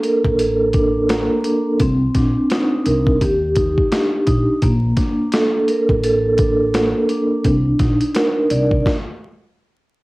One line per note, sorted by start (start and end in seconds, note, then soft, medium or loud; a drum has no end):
0.00 0.38 A#3 medium
0.00 0.73 D4 medium
0.00 0.38 A4 medium
0.00 1.44 A#4 medium
0.00 closed hi-hat medium
0.24 1.26 A1 medium
0.24 kick medium
0.39 1.80 A4 medium
0.39 closed hi-hat loud
0.73 1.44 D4 medium
0.73 kick loud
0.73 closed hi-hat medium
1.09 1.80 A#3 medium
1.09 snare loud
1.09 closed hi-hat medium
1.44 1.80 D4 medium
1.44 closed hi-hat medium
1.80 2.09 C2 loud
1.80 3.21 C4 loud
1.80 kick loud
1.80 closed hi-hat medium
2.15 2.32 A#1 medium
2.15 3.22 D4 medium
2.15 kick medium
2.15 snare soft
2.15 closed hi-hat medium
2.50 3.21 D#4 medium
2.50 snare loud
2.50 closed hi-hat medium
2.86 3.15 C2 loud
2.86 3.21 A#4 medium
2.86 closed hi-hat medium
3.07 kick medium
3.21 3.78 D#2 loud
3.21 4.62 G4 medium
3.21 kick medium
3.21 closed hi-hat loud
3.56 4.25 D#4 medium
3.56 kick loud
3.56 closed hi-hat medium
3.78 kick medium
3.91 4.62 D4 medium
3.91 snare loud
3.91 closed hi-hat medium
4.27 4.44 A#1 medium
4.27 4.62 D#4 medium
4.27 kick medium
4.27 closed hi-hat medium
4.62 4.91 A#1 loud
4.62 6.04 A#3 medium
4.62 kick loud
4.62 closed hi-hat medium
4.97 6.37 D4 medium
4.97 kick medium
4.97 snare soft
4.97 closed hi-hat medium
5.32 6.03 A4 medium
5.32 snare loud
5.32 closed hi-hat medium
5.68 7.10 A#4 medium
5.68 closed hi-hat medium
5.89 6.91 A1 medium
5.89 kick medium
6.03 7.45 A4 loud
6.03 closed hi-hat loud
6.38 7.08 D4 medium
6.38 kick loud
6.38 closed hi-hat medium
6.74 7.45 A#3 medium
6.74 snare loud
6.74 closed hi-hat medium
7.09 7.44 D4 medium
7.09 closed hi-hat medium
7.44 7.73 C2 loud
7.44 8.86 D4 medium
7.44 kick loud
7.44 closed hi-hat medium
7.79 7.97 A#1 medium
7.79 8.86 D#4 medium
7.79 kick medium
7.79 snare soft
7.79 closed hi-hat medium
8.01 closed hi-hat medium
8.15 8.86 A#4 medium
8.15 snare loud
8.15 closed hi-hat medium
8.50 8.79 C2 medium
8.50 8.86 D5 medium
8.50 closed hi-hat medium
8.71 kick medium
8.86 kick loud
8.86 snare medium